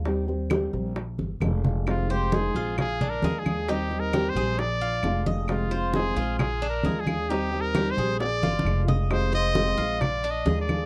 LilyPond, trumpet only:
\new Staff \with { instrumentName = "Trumpet" } { \time 4/4 \key bes \mixolydian \tempo 4 = 133 r1 | f'8 g'8 aes'4 \tuplet 3/2 { aes'4 bes'8~ bes'8 aes'4 } | \tuplet 3/2 { g'4 bes'8~ bes'8 c''4 } d''4. r8 | f'4 aes'4 \tuplet 3/2 { aes'4 bes'8~ bes'8 aes'4 } |
\tuplet 3/2 { g'4 bes'8~ bes'8 c''4 } d''4. r8 | c''8 ees''4. \tuplet 3/2 { d''4 ees''8~ ees''8 d''4 } | }